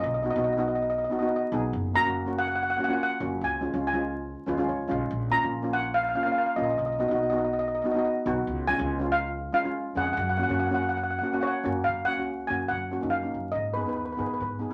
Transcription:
0.04 B1 D#5
0.14 D#5
0.23 B3 D#4 F#4 D#5
0.30 D#5
0.36 B1 B3 D#4 F#4 D#5
0.44 D#5
0.53 D#5
0.57 B3 D#4 F#4 D#5
0.68 D#5
0.75 D#5
0.82 D#5
0.90 D#5
0.98 D#5
1.04 D#5
1.10 B3 D#4 F#4 D#5
1.19 B3 D#4 F#4 D#5
1.27 D#5
1.36 D#5
1.52 B1 B3 D#4 G#4
1.73 F#1
1.94 A#3 C#4 F#4 A#5
2.05 F#1 A#3 C#4 F#4
2.26 A#3 C#4 F#4
2.38 F#5
2.48 F#5
2.55 F#5
2.63 F#5
2.70 F#5
2.77 A#3 C#4 F#4 F#5
2.84 F#5
2.88 A#3 C#4 F4
2.93 F#5
3.03 F#5
3.20 F#1 A#3 C#4 F#4
3.41 C#2 G#5
3.61 G#3 C#4 F4
3.73 C#2 G#3 C#4 F4
3.87 G#5
3.93 G#3 C#4 F4
4.46 D#2 G#3 C#4 F4 B4
4.57 G#3 C#4 F4
4.69 C#2 C#5
4.88 B1 G#3 C#4 F4 F5
5.11 A#1
5.30 A#3 C#4 F4 A#5
5.43 A#1 A#3 C#4 F4
5.62 A#3 C#4 F4
5.73 F#5
5.94 F5
6.03 F5
6.09 F5
6.15 A#3 C#4 F4 F5
6.23 A#3 C#4 F5
6.27 F4
6.32 F5
6.38 F5
6.46 F5
6.56 A#1 A#3 C#4 F4 D#5
6.64 D#5
6.71 D#5
6.78 B1 D#5
6.86 D#5
6.92 D#5
6.99 B3 D#4 F#4 D#5
7.08 B1 B3 D#4 F#4 D#5
7.15 D#5
7.23 D#5
7.30 B3 D#4 F#4 D#5
7.38 D#5
7.45 D#5
7.53 D#5
7.59 D#5
7.68 D#5
7.75 D#5
7.82 B3 D#4 D#5
7.86 F#4
7.91 B3 D#4 D#5
7.97 F#4 D#5
8.05 D#5
8.26 B1 B3 D#4 F#4
8.47 C#2
8.68 G#3 C#4 F4 G#5
8.78 C#2 G#3 C#4 F4
8.99 G#3 C#4 F4
9.12 F5
9.52 G#3 C#4 F4 F5
9.64 G#3 C#4 F4
9.95 F2 G#3 C#4 G#4 F#5
10.06 F#5
10.13 F#2 F#5
10.21 F#5
10.29 F#5
10.38 A#3 C#4 F#4 F#5
10.43 F#5
10.49 F#2 A#3 C#4 F#4
10.54 F#5
10.60 F#5
10.67 A#3 F#5
10.71 C#4 F#4 F#5
10.83 F#5
10.89 F#5
10.97 F#5
11.03 F#5
11.11 F#5
11.19 A#3 F#5
11.23 C#4 F#4 F#5
11.33 A#3 C#4 F#4 F#5
11.41 C#5 F#5
11.47 F#5
11.64 F#2 A#3 C#4 F#4
11.84 F#2 F5
12.05 A#3 C#4 F#4 F#5
12.17 C#2 A#3 C#4 F#4
12.47 F#2 A#3 C#4 F#4 G#5
12.68 F#2 F#5
12.91 A#3 C#4 F#4
13.01 F#2 A#3 C#4 D#4
13.10 F5
13.22 A#3 C#4 D#4
13.34 F#2
13.52 G#2 D#5
13.74 B3 D#4 G#4 B4
13.81 B4
13.86 D#2 B3 D#4 B4
13.96 B4
14.05 B4
14.13 B4
14.17 G#2 B3 D#4 G#4 B4
14.27 B4
14.34 B4
14.40 G#2 B4
14.59 B3 D#4 G#4

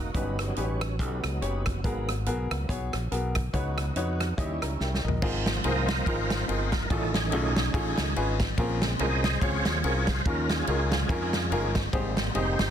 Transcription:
Already playing: A#3 D#4 F#4
0.14 G1 G2 F#3 B3 C#4 D#4 G4 B4, kick, closed hi-hat
0.38 G3 B3 C#4, cross-stick, closed hi-hat
0.56 A1 F#3 C#4 D#4 G4 B4, closed hi-hat
0.81 cross-stick, closed hi-hat
0.99 B1 F#3 B3 C#4 D#4 G4 A4, kick, closed hi-hat
1.24 C#2, cross-stick, closed hi-hat
1.41 F#1 C#4 D#4 G4 C#5, closed hi-hat
1.66 kick, cross-stick, closed hi-hat
1.84 G#1 G#2 F#3 A#3 B3 F#4 G#4 A#4, kick, closed hi-hat
2.09 cross-stick, closed hi-hat
2.26 B1 B3 F#4 G#4 A#4, closed hi-hat
2.51 C#2 F#3 A#3 B3, cross-stick, closed hi-hat
2.69 B1 B3 F#4 G#4 C#5, kick, closed hi-hat
2.93 A#1, cross-stick, closed hi-hat
3.12 B1 B3 F#4 G#4 A#4, closed hi-hat
3.35 kick, cross-stick, closed hi-hat
3.53 C#2 C#3 B3 D#4 F#4 B4 C#5, kick, closed hi-hat
3.78 cross-stick, closed hi-hat
3.96 F2 D#4 F#4 B4 C#5, closed hi-hat
4.20 cross-stick, closed hi-hat
4.37 D#2 D#3 G3 C#4 E4 G4 C#5 D#5, kick, closed hi-hat
4.62 C#2 A#5, cross-stick, closed hi-hat
4.80 C2 A#4 E5 G5, snare
4.94 snare
5.04 A#1 A#4 D#5
5.08 floor tom
5.22 G#1 G#2 C4 D#4 F4 G#4 A#4, kick, crash
5.46 F3 A#3 C4, snare, ride bell
5.64 C2 C4 D#4 F4 G#4 A#4 C5 D#5, ride bell
5.88 snare, ride bell
6.06 G#1 C4 D#4 F4 G#4 A#4 C5, kick, ride bell
6.30 F3 A#3 C4, snare, ride bell
6.48 G1 C4 D#4 F4 G#4 A#4, ride bell
6.72 A#4, kick, snare, ride bell
6.90 A1 A2 D#3 A3 C#4 D#4 F4 G#4 A4, kick, ride bell
7.14 C#4 D#4 G#4, snare, ride bell
7.32 B1 C#4 D#4 F4 G#4 A4, ride bell
7.56 snare, ride bell
7.74 A1 C#4 D#4 F4 G#4 A4, kick, ride bell
7.98 C#2 D#3 A3 C#4, snare, ride bell
8.16 G#1 C#4 D#4 F4 G#4 B4, ride bell
8.40 kick, snare, ride bell
8.58 A#1 A#2 C4 C#4 F4 G#4 A#4, kick, ride bell
8.82 C#3 G#3 C4, snare, ride bell
8.99 C2 C4 C#4 F4 G#4 A#4 C5 D#5, ride bell
9.24 snare, ride bell
9.42 C#2 C4 C#4 F4 G#4 C#5, kick, ride bell
9.65 D#2, snare, ride bell
9.84 C2 C4 C#4 F4 G#4 A#4, ride bell
10.07 C5, kick, snare, ride bell
10.25 D#2 D#3 C#4 D#4 F4 G#4 A#4, kick, ride bell
10.50 C#4 F4 G#4, snare, ride bell
10.67 C#2 C#4 D#4 F4 G#4 A#4, ride bell
10.91 F3 G#3 C#4, snare, ride bell
11.09 F2 C#4 D#4 F4 G#4 A#4, kick, ride bell
11.33 snare, ride bell
11.52 G1 C#4 D#4 F4 G#4 A#4, ride bell
11.75 kick, snare, ride bell
11.93 G#1 G#2 G3 A#3 C4 D#4 G4 G#4 C5, kick, ride bell
12.17 snare, ride bell
12.35 F1 C4 D#4 G4 G#4 C5 D#5, ride bell
12.59 G1, snare, ride bell

